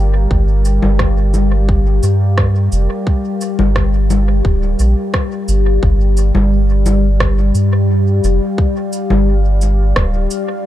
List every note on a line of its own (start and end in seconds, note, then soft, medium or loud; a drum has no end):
0.00 0.27 G1 medium
0.00 5.82 G3 medium
0.00 5.83 G4 medium
0.00 5.83 A#4 medium
0.00 5.83 F5 medium
0.31 0.80 G1 medium
0.31 kick loud
0.65 shaker soft
0.82 2.00 G1 medium
0.82 low conga medium
0.99 kick loud
0.99 cross-stick medium
1.34 low conga medium
1.34 shaker soft
1.69 kick loud
2.03 2.69 G2 medium
2.03 shaker medium
2.38 kick loud
2.38 cross-stick medium
2.72 2.88 F1 loud
2.72 shaker soft
3.07 kick loud
3.41 shaker soft
3.59 4.41 G1 medium
3.59 low conga medium
3.76 kick loud
3.76 cross-stick medium
4.10 low conga medium
4.10 shaker medium
4.45 4.75 D1 medium
4.45 kick loud
4.79 4.95 A#1 medium
4.79 shaker medium
5.14 kick loud
5.14 cross-stick medium
5.48 5.79 G1 medium
5.48 shaker medium
5.83 6.32 G1 loud
5.83 10.66 G3 medium
5.83 kick loud
6.17 shaker medium
6.27 10.66 G4 medium
6.35 7.52 G1 medium
6.35 low conga medium
6.86 low conga medium
6.86 shaker medium
7.20 10.66 F5 medium
7.20 kick loud
7.20 cross-stick medium
7.54 8.21 G2 medium
7.54 10.66 D5 medium
7.54 shaker medium
8.24 8.40 F1 loud
8.24 shaker medium
8.58 kick loud
8.93 shaker medium
9.10 9.93 G1 medium
9.10 low conga medium
9.61 shaker medium
9.96 10.27 D1 medium
9.96 kick loud
9.96 cross-stick medium
10.31 shaker medium